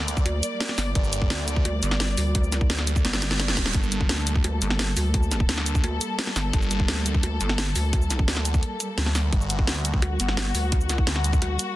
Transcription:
Already playing: D2 G3 A#3 D5
0.08 closed hi-hat, cabasa
0.17 kick, cabasa
0.26 D2, closed hi-hat
0.43 closed hi-hat, cabasa
0.60 snare, closed hi-hat
0.69 snare
0.78 G1, snare, open hi-hat, cabasa
0.95 G1, kick, closed hi-hat
1.04 cabasa
1.13 closed hi-hat, cabasa
1.22 kick
1.30 D2, snare, closed hi-hat
1.48 closed hi-hat, cabasa
1.56 kick
1.65 D2, closed hi-hat
1.83 G1, closed hi-hat, cabasa
1.91 snare
2.00 snare, closed hi-hat
2.17 D2, open hi-hat, cabasa
2.35 kick, closed hi-hat
2.44 cabasa
2.52 snare, closed hi-hat, cabasa
2.61 kick
2.70 D2, snare, closed hi-hat
2.78 snare
2.87 closed hi-hat, cabasa
2.96 kick, cabasa
3.05 G1, snare, closed hi-hat, reverse cymbal
3.13 snare, cabasa
3.22 snare, closed hi-hat, cabasa
3.31 snare
3.40 snare, closed hi-hat
3.48 snare
3.57 kick, snare, open hi-hat, cabasa
3.66 snare
3.74 G1 A4, kick, closed hi-hat
3.83 cabasa
3.92 closed hi-hat, cabasa
4.01 kick
4.09 D2, snare, closed hi-hat
4.27 closed hi-hat, cabasa
4.36 kick
4.44 D2, closed hi-hat
4.62 G1, closed hi-hat, cabasa
4.70 snare
4.79 snare, closed hi-hat
4.97 D2, open hi-hat, cabasa
5.14 kick, closed hi-hat
5.23 cabasa
5.31 snare, closed hi-hat, cabasa
5.40 kick
5.49 D2, snare, closed hi-hat
5.58 snare
5.66 closed hi-hat, cabasa
5.75 kick, cabasa
5.84 D2, closed hi-hat
6.01 closed hi-hat, cabasa
6.19 snare, closed hi-hat
6.27 snare
6.36 G1, snare, open hi-hat, cabasa
6.53 G1, kick, closed hi-hat
6.62 cabasa
6.71 closed hi-hat, cabasa
6.80 kick
6.88 D2, snare, closed hi-hat
7.06 closed hi-hat, cabasa
7.15 kick
7.23 D2, closed hi-hat
7.41 G1, closed hi-hat, cabasa
7.49 snare
7.58 snare, closed hi-hat
7.76 D2, open hi-hat, cabasa
7.93 kick, closed hi-hat
8.02 cabasa
8.10 snare, closed hi-hat, cabasa
8.19 kick
8.28 D2, snare, closed hi-hat
8.37 snare
8.45 closed hi-hat, cabasa
8.54 kick, cabasa
8.63 closed hi-hat
8.80 closed hi-hat, cabasa
8.98 D2, snare, closed hi-hat
9.06 snare
9.15 snare, open hi-hat, cabasa
9.33 G1 F#4, kick, closed hi-hat
9.41 cabasa
9.50 closed hi-hat, cabasa
9.59 kick
9.67 D2, snare, closed hi-hat
9.85 closed hi-hat, cabasa
9.94 kick
10.02 D2, closed hi-hat
10.20 G1, closed hi-hat, cabasa
10.28 snare
10.37 snare, closed hi-hat
10.55 D2, open hi-hat, cabasa
10.72 kick, closed hi-hat
10.81 cabasa
10.89 snare, closed hi-hat, cabasa
10.98 kick
11.07 D2, snare, closed hi-hat
11.16 snare
11.24 closed hi-hat, cabasa
11.33 kick, cabasa
11.42 D2, closed hi-hat
11.59 closed hi-hat, cabasa

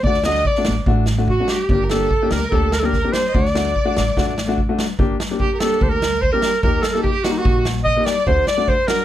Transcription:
0.03 D2 A3 D4 F#4 D5, kick
0.14 snare
0.23 A3 D4 F#4 D#5, snare
0.34 snare
0.45 D5, kick
0.55 A3 D4 F#4, snare
0.65 A1, snare
0.86 A1 A3 D4 F#4, kick
1.06 snare
1.18 A3 D4 F#4
1.28 F#4, kick
1.40 A3 D4 F#4
1.48 G4, snare
1.69 G1 A#3 D4 G4, kick
1.83 A#4
1.90 A#3 D4 G4 A4, snare
2.00 snare
2.11 kick
2.22 A#3 D4 G4
2.31 D2 A#4, snare
2.42 snare
2.51 D2 A#3 D4 G4 A4, kick
2.55 A4
2.72 A#4, snare
2.79 A#3 D4 A4
2.84 G4 A#4
2.89 A#4
2.93 kick, snare
3.04 A#3 D4 G4
3.13 C5, snare
3.28 D#5
3.34 D2 A3 D4 F#4 D5, kick
3.45 snare
3.54 A3 D4 F#4, snare
3.76 kick
3.85 A3 D4 F#4
3.97 A1, snare
4.17 A1 A3 D4 F#4, kick, snare
4.38 snare
4.47 A3 D4 F#4
4.58 kick
4.69 A3 D4 F#4
4.79 snare
4.99 G1 A#3 D4 G4, kick
5.20 snare
5.31 A#3 D4 G4
5.40 G4, kick
5.54 A#4
5.58 A#3 D4 G4 A4, snare
5.81 D2 C5, kick
5.89 A#4
6.02 snare
6.22 C5, kick
6.31 A#3 D4 G4 A#4
6.42 snare
6.62 D#2 A#3 D#4 G4 A#4, kick
6.81 A4, snare
6.85 A#4
6.93 A#3 D#4 G4 A4
7.03 G4, kick
7.12 G4
7.24 A#3 D#4 F#4 G4, snare
7.32 D#4
7.38 F#4
7.45 A#1, kick
7.65 snare
7.84 D#5, kick
7.97 A#3 D#4 G4
8.01 D#5
8.06 D5, snare
8.27 D2 A3 D4 F#4 C5, kick
8.47 D5, snare
8.57 A3 D4 F#4
8.68 C5, kick
8.88 F#3 D4 F#4 A#4, snare

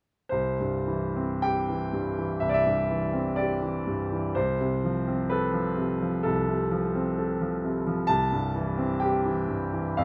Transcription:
0.29 C2 C5
0.60 G2
0.87 E3
1.16 C4
1.42 G4 G5
1.69 E3
1.93 G2
2.19 E3
2.40 C2 E5
2.49 D5
2.54 E5
2.66 G2
2.90 E3
3.13 C4
3.36 G4 D5
3.62 E3
3.87 G2
4.12 E3
4.35 C2 C5
4.61 C3
4.84 F3
5.08 C4
5.30 A4 B4
5.53 F3
5.77 C3
6.02 F3
6.23 C2 A4
6.49 C3
6.71 F3
6.95 C4
7.18 A4
7.41 F3
7.64 C3
7.87 F3
8.07 C2 A5
8.32 G2
8.55 E3
8.77 C4
9.00 G4 G5
9.26 E3
9.48 G2
9.73 E3
9.97 F2 F5

